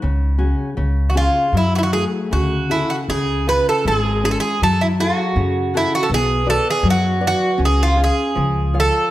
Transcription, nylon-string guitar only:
X:1
M:2/4
L:1/8
Q:1/4=79
K:C#phr
V:1 name="Nylon-string guitar"
C, [CFG] C, [C^EG] | F, [A,FG] C, [FGA] | C, [C^EG] G, [CEG] | F, [FGA] C, [FGA] |
B, [FBd] F, [FBd] | C [Gc^e] ^E, [^Ece] |]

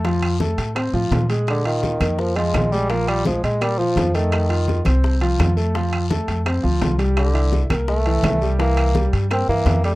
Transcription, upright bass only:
X:1
M:4/4
L:1/8
Q:1/4=169
K:Bb
V:1 name="Upright bass" clef=bass
F,,3 A,,2 A,, B,,2- | B,,3 F,,3 B,,,2- | B,,,3 B,,3 F,,2- | F,,3 C,,3 F,,2- |
F,,3 F,,2 D,, C,,2- | C,,3 C,,3 C,,2- | C,,3 G,,2 G,, F,,2 |]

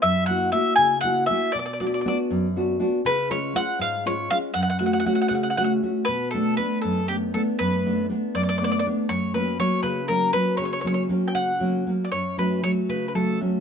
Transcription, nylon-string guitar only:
X:1
M:6/8
L:1/8
Q:3/8=79
K:C#phr
V:1 name="Nylon-string guitar"
F,, [^A,EF] [A,EF] C, [A,EF] [A,EF] | B,, [B,DF] [B,DF] F,, [B,DF] [B,DF] | C, [G,C^E] [G,CE] G,, [G,CE] [G,CE] | F,, [A,CF] [A,CF] C, [A,CF] [A,CF] |
[K:Bm] B,, [A,B,D] [A,B,D] F,, [A,B,D] [A,B,D] | F,, [A,B,D] [A,B,D] F,, [A,B,D] [A,B,D] | F,, [F,^A,C] [F,A,C] C, [F,A,C] [F,A,C] | C, [F,^A,C] [F,A,C] C, [F,A,C] [F,A,C] |
F,, [F,A,C] [F,A,C] C, [F,A,C] [F,A,C] |]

